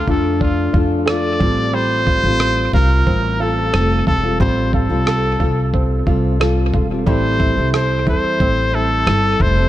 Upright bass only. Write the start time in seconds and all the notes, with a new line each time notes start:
0.07 F2
0.74 F2
1.41 A1
2.23 A1
2.73 C2
3.07 A1
3.74 F1
4.08 E1
4.40 A1
4.89 C2
5.40 C2
6.07 C2
6.73 E1
7.07 A1
7.57 C2
8.07 E2
8.40 A1
9.07 G1
9.40 F1